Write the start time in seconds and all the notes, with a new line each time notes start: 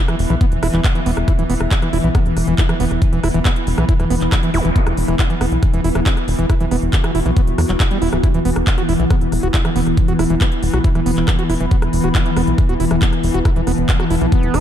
Already playing: E3 B3 E4 E5
0.08 E3, cross-stick, closed hi-hat
0.19 E1, open hi-hat
0.30 B1 E3, cross-stick
0.41 B3, kick, closed hi-hat
0.52 E1, closed hi-hat
0.63 E1 E4, cross-stick, open hi-hat
0.74 E1 E3, clap, closed hi-hat
0.84 kick, cross-stick, clap, closed hi-hat
0.95 E3, closed hi-hat
1.06 E1 B3, open hi-hat
1.17 E1, cross-stick, closed hi-hat
1.28 E4, kick, cross-stick, closed hi-hat
1.39 E1 E3, closed hi-hat
1.50 E1 B3, open hi-hat
1.60 E1, cross-stick, closed hi-hat
1.71 kick, clap, closed hi-hat
1.82 E3, cross-stick, closed hi-hat
1.93 E1 E4, open hi-hat
2.04 B1 E3, closed hi-hat
2.15 B3, kick, cross-stick, closed hi-hat
2.26 E1, closed hi-hat
2.37 E1, cross-stick, open hi-hat
2.47 E1 E3, closed hi-hat
2.58 E4, kick, clap, closed hi-hat
2.69 E3, cross-stick, closed hi-hat
2.80 E1 B3, open hi-hat
2.90 E1 B5, cross-stick, closed hi-hat
3.02 kick, closed hi-hat
3.13 E1 E3, closed hi-hat
3.23 E1 E4, cross-stick, open hi-hat
3.34 E1 E3, closed hi-hat
3.45 B3, kick, cross-stick, clap, closed hi-hat
3.56 closed hi-hat
3.67 E1, open hi-hat
3.78 B1 E3, cross-stick
3.89 E4, kick, closed hi-hat
4.00 E1 E3, cross-stick, closed hi-hat
4.10 E1 B3, open hi-hat
4.21 E1, clap, closed hi-hat
4.32 kick, cross-stick, clap, closed hi-hat
4.43 E3, closed hi-hat
4.54 E1 E4, cross-stick, open hi-hat, zap
4.65 E1 E3, closed hi-hat
4.76 B3, kick, closed hi-hat
4.87 E1, cross-stick, closed hi-hat
4.97 E1, open hi-hat
5.08 E1 E3, cross-stick, closed hi-hat
5.19 E4, kick, clap, closed hi-hat
5.30 E3, closed hi-hat
5.41 E1 B3, cross-stick, open hi-hat
5.52 B1, closed hi-hat
5.63 kick, cross-stick, closed hi-hat
5.74 E1 E3, closed hi-hat
5.84 E1 E4, open hi-hat
5.95 E1 E3, cross-stick, closed hi-hat
6.06 B3, kick, clap, closed hi-hat
6.17 cross-stick, closed hi-hat
6.28 E1, open hi-hat
6.38 E1 E3 F#4, closed hi-hat
6.50 E4, kick, cross-stick, closed hi-hat
6.60 E1 E3, closed hi-hat
6.71 E1 B3, cross-stick, open hi-hat
6.82 E1, closed hi-hat
6.93 kick, clap, closed hi-hat
7.04 E3, cross-stick, closed hi-hat
7.15 E1 E4, open hi-hat
7.26 B1 E3, cross-stick, closed hi-hat
7.37 B3, kick, closed hi-hat
7.47 E1, closed hi-hat
7.58 E2 E3, cross-stick, open hi-hat
7.69 E1 F#3, clap, closed hi-hat
7.80 kick, cross-stick, clap, closed hi-hat
7.91 G3, closed hi-hat
8.02 E1 E4, open hi-hat
8.13 D1 E3, cross-stick, closed hi-hat
8.24 E3 E4, kick, cross-stick, closed hi-hat
8.34 E1 E3, closed hi-hat
8.45 E1 B3, open hi-hat
8.56 E1, cross-stick
8.67 kick, clap, closed hi-hat
8.78 F#4, cross-stick, closed hi-hat
8.89 E1 E4, open hi-hat
9.00 B1 E3, closed hi-hat
9.10 B3, kick, cross-stick, closed hi-hat
9.21 E1, closed hi-hat
9.32 E1, cross-stick, open hi-hat
9.43 E1 F#4, closed hi-hat
9.54 E4, kick, clap, closed hi-hat
9.65 E3, cross-stick, closed hi-hat
9.76 E1 B3, open hi-hat
9.86 E1 B5, cross-stick, closed hi-hat
9.97 kick, closed hi-hat
10.08 E1 F#4, closed hi-hat
10.19 E1 E4, cross-stick, open hi-hat
10.30 E1 E3, closed hi-hat
10.41 B3, kick, cross-stick, clap, closed hi-hat
10.52 closed hi-hat
10.63 E1, open hi-hat
10.73 B1 F#4, cross-stick
10.84 E4, kick, closed hi-hat
10.95 E1 E3, cross-stick, closed hi-hat
11.06 E1 B3, open hi-hat
11.17 E1, clap
11.28 kick, cross-stick, clap, closed hi-hat
11.39 F#4, closed hi-hat
11.50 E1 E4, cross-stick, open hi-hat
11.60 E1 E3, closed hi-hat
11.71 B3, kick, closed hi-hat
11.82 E1, cross-stick, closed hi-hat
11.93 E1, open hi-hat
12.04 E1 F#4, cross-stick
12.15 E4, kick, clap, closed hi-hat
12.26 E3, closed hi-hat
12.37 E1 B3, cross-stick, open hi-hat
12.47 B1, closed hi-hat
12.58 kick, cross-stick, closed hi-hat
12.69 E1 F#4, closed hi-hat
12.80 E1 E4, open hi-hat
12.91 E1 E3, cross-stick, closed hi-hat
13.02 B3, kick, clap, closed hi-hat
13.13 cross-stick, closed hi-hat
13.23 E1, open hi-hat
13.33 E1 F#4 A5, closed hi-hat
13.45 E4, kick, cross-stick, closed hi-hat
13.56 E1 E3, closed hi-hat
13.67 E1 B3, cross-stick, open hi-hat
13.78 E1, closed hi-hat
13.89 kick, clap, closed hi-hat
14.00 F#4, cross-stick, closed hi-hat
14.10 E1 E4, open hi-hat
14.21 B1 E3, cross-stick, closed hi-hat
14.32 B3, kick, closed hi-hat
14.43 E1, closed hi-hat
14.54 E1 E4, cross-stick, open hi-hat